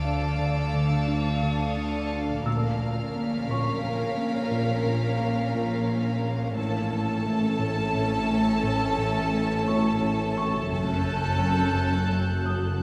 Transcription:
Already playing: synth drone D2, double bass section D2, cello section D3, viola section D4, violin section A4 F5 A5 D6 E6, ambient pad D5 F5 A5, felt piano A5 A6
0.05 analog synth bass D4
0.39 analog synth bass D3
0.74 analog synth bass D3
1.08 analog synth bass D4
1.32 violin section C#6
1.43 analog synth bass D3
1.49 violin section D#6
1.77 analog synth bass D3
2.13 analog synth bass D4
2.45 synth drone A#1, double bass section A#1, analog synth bass A#2, cello section A#2, viola section C#4, violin section A#4 F5 F6, ambient pad A#4 C#5 F5, felt piano E6
2.81 analog synth bass A#2
3.15 analog synth bass A#3, violin section B6
3.49 analog synth bass A#2, felt piano C#5 C#6
3.84 analog synth bass A#2
4.17 analog synth bass A#3
4.52 analog synth bass A#2
4.86 analog synth bass A#2
5.20 analog synth bass A#3
5.55 analog synth bass A#2
5.90 analog synth bass A#2
6.24 analog synth bass A#3
6.57 synth drone A1, double bass section A1, analog synth bass A2, cello section A2, viola section C#4, violin section A4 A5, ambient pad C#5 E5 A5
6.92 analog synth bass A2
7.26 analog synth bass A3
7.60 analog synth bass A2
7.94 analog synth bass A2
8.29 analog synth bass A3
8.64 analog synth bass A2
8.98 analog synth bass A2
9.34 analog synth bass A3
9.68 analog synth bass A2, felt piano C#5 C#6
10.02 analog synth bass A2
10.36 analog synth bass A3, felt piano C#6
10.70 synth drone F#1, double bass section F#1, analog synth bass F#2, cello section F#2, viola section C#4, ambient pad F#4, violin section A4 A5 F#6 G6
11.05 analog synth bass F#2
11.39 analog synth bass F#3
11.75 analog synth bass F#2
12.10 analog synth bass F#2
12.46 analog synth bass F#3, felt piano D#6

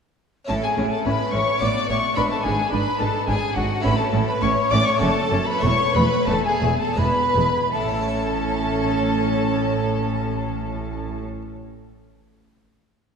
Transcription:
0.45 cello section A2, harpsichord C#4 E4 A4, flute A5
0.49 double bass section A1, harpsichord A2, viola section C#4, violin section A4 A5
0.63 violin section G#4 G#5, flute G#5
0.77 double bass section A1, cello section A2, harpsichord A2, viola section C#4
0.91 violin section A4 A5, flute A5
1.04 double bass section A1, cello section A2, harpsichord A2, viola section C#4, violin section B4 B5, flute B5
1.32 double bass section A1, cello section A2, harpsichord A2, viola section C#4, violin section C#5 C#6, flute C#6
1.57 cello section A2, harpsichord B3 D4 F#4, viola section B3, violin section D6
1.61 double bass section A1, harpsichord A2, violin section D5, flute D6
1.88 double bass section A1, harpsichord A2, cello section A2, viola section B3, violin section C#5 C#6, flute C#6
2.12 harpsichord B3 D4 E4, violin section B5
2.16 double bass section G#1, harpsichord G#2, cello section G#2, viola section D4, violin section B4, flute B5
2.30 violin section A4 A5, flute A5
2.44 double bass section G#1, harpsichord G#2, cello section G#2, viola section D4, violin section G#4 G#5, flute G#5
2.71 double bass section G#1, harpsichord G#2, cello section G#2, viola section D4, violin section B4 B5, flute B5
2.98 double bass section G#1, harpsichord G#2, cello section G#2, viola section D4, violin section A4 A5, flute A5
3.27 double bass section G#1, harpsichord G#2, cello section G#2, viola section D4, violin section G#4 G#5, flute G#5
3.55 double bass section G#1, harpsichord G#2, cello section G#2, viola section D4, violin section F#4 F#5, flute F#5
3.80 harpsichord A3 C#4 E4, viola section C#4, violin section B4 B5, flute B5
3.84 double bass section A1, cello section A2, harpsichord A2
3.98 violin section A4 A5, flute A5
4.12 double bass section A1, harpsichord A2, cello section A2, viola section C#4
4.27 violin section B4 B5, flute B5
4.41 double bass section A1, harpsichord A2, cello section A2, viola section C#4, violin section C#5 C#6, flute C#6
4.70 double bass section A1, harpsichord A2, cello section A2, viola section C#4, violin section D5 D6, flute D6
4.85 violin section C#5 C#6, flute C#6
4.95 harpsichord A3 C#4 F#4
5.00 double bass section F#1, harpsichord F#2, cello section F#2, viola section C#4, violin section A4 A5, flute A5
5.31 double bass section F#1, harpsichord F#2, cello section F#2, viola section C#4
5.46 violin section B4 B5, flute B5
5.58 harpsichord A3 C#4 A4
5.62 double bass section E1, harpsichord E2, cello section E2, viola section A3, violin section C#5 C#6, flute C#6
5.94 double bass section E1, harpsichord E2, cello section E2, viola section A3, violin section B4 B5, flute B5
6.26 double bass section E1, harpsichord E2, cello section E2, viola section A3, violin section A4 A5, flute A5
6.45 violin section G#4 G#5, flute G#5
6.62 double bass section E1, harpsichord E2, cello section E2, viola section A3
6.79 violin section A4 A5, flute A5
6.93 harpsichord B3 D4 G#4
6.97 double bass section E1, harpsichord E2, cello section E2, viola section G#3, violin section B4 B5, flute B5
7.34 double bass section E1, harpsichord E2, cello section E2, viola section G#3
7.72 double bass section A1, harpsichord A2, cello section A2, viola section C#4, violin section A4 A5, flute A5
7.80 harpsichord A3
7.87 harpsichord C#4
7.94 harpsichord E4
8.01 harpsichord A4
8.08 harpsichord E5

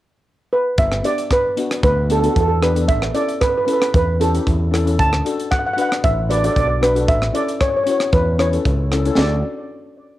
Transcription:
0.53 steel pan B4
0.78 fingered electric bass G1, steel pan E5, kick, closed hi-hat
0.92 cross-stick
1.03 steel pan B3 D4 G4 D5, closed hi-hat
1.18 closed hi-hat
1.31 steel pan B4, kick, cross-stick, closed hi-hat
1.57 steel pan B3 D4 F#4, closed hi-hat
1.71 cross-stick, closed hi-hat
1.83 fingered electric bass D2, steel pan B4, kick, closed hi-hat
2.09 steel pan B3 D4 G4 A4, closed hi-hat
2.20 steel pan B3 D4 A4, closed hi-hat
2.24 steel pan F#4 A4
2.34 fingered electric bass E2, steel pan A4, kick, closed hi-hat
2.41 steel pan A4
2.48 steel pan A4
2.61 steel pan B3 D4 G4 B4, cross-stick, closed hi-hat
2.75 steel pan B3 D4 A4, closed hi-hat
2.88 fingered electric bass A1, steel pan E5, kick, closed hi-hat
3.02 cross-stick
3.14 steel pan C#4 E4 A4 D5, closed hi-hat
3.29 closed hi-hat
3.41 steel pan B4, kick, cross-stick, closed hi-hat
3.49 steel pan B4
3.58 steel pan B4
3.65 steel pan C#4 E4 A4 B4, closed hi-hat
3.73 steel pan B4
3.80 steel pan B4, cross-stick, closed hi-hat
3.94 fingered electric bass E2, steel pan B4, kick, closed hi-hat
4.20 steel pan C#4 E4 G4 A4, closed hi-hat
4.33 steel pan C#4 E4 G4, closed hi-hat
4.47 fingered electric bass E2, kick, closed hi-hat
4.71 steel pan C#4 E4 A4, cross-stick, closed hi-hat
4.86 steel pan C#4 E4 A4, closed hi-hat
4.99 fingered electric bass D2, steel pan A5, kick, closed hi-hat
5.13 cross-stick
5.25 steel pan D4 F#4 A4, closed hi-hat
5.39 closed hi-hat
5.51 steel pan F#5, kick, cross-stick, closed hi-hat
5.59 steel pan F#5
5.67 steel pan F#5
5.73 steel pan D4 F#5
5.78 steel pan F#4 B4 F#5, closed hi-hat
5.89 steel pan F#5, cross-stick, closed hi-hat
6.04 fingered electric bass A1, steel pan E5, kick, closed hi-hat
6.29 steel pan D4 F#4 B4 D5, closed hi-hat
6.37 steel pan D5
6.43 steel pan D4 F#4 A4 D5, closed hi-hat
6.53 fingered electric bass B1, steel pan D5, kick
6.57 steel pan D5, closed hi-hat
6.68 steel pan D5
6.81 steel pan D4 F#4 B4, cross-stick, closed hi-hat
6.95 steel pan D4 F#4 A4, closed hi-hat
7.08 fingered electric bass A1, steel pan E5, kick, closed hi-hat
7.22 cross-stick
7.33 steel pan C#4 E4 A4 D5, closed hi-hat
7.48 closed hi-hat
7.61 steel pan C#5, kick, cross-stick, closed hi-hat
7.69 steel pan C#5
7.77 steel pan C#5
7.83 steel pan C#4 E4 C#5, closed hi-hat
7.88 steel pan F#4 C#5
7.98 steel pan C#5, cross-stick, closed hi-hat
8.13 fingered electric bass E2, steel pan B4, kick, closed hi-hat
8.38 steel pan C#4 E4 B4 C#5, cross-stick, closed hi-hat
8.52 steel pan C#4 E4 A4, closed hi-hat
8.65 fingered electric bass C#2, kick, closed hi-hat
8.92 steel pan C#4 E4 A4, cross-stick, closed hi-hat
9.06 steel pan C#4 E4 A4, closed hi-hat
9.17 fingered electric bass D2, steel pan D4 F#4 A4 D5, snare

